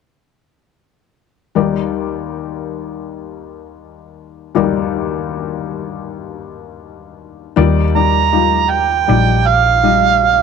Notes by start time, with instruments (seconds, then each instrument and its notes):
1.55 felt piano D#2 D#3 G3 D#4 D5
4.55 felt piano D#2 D#3 G3 D#4 D5
7.56 felt piano D#2 D#3 G3 D#4 D5, fingered electric bass D#2
7.95 felt piano G3 D#4 D5, harmonica A#5
8.32 felt piano G3 D#4 F4
8.70 harmonica G5
9.07 fingered electric bass A#1, felt piano G3 D#4 D5
9.47 harmonica F5
9.83 felt piano G3 D#4 D#5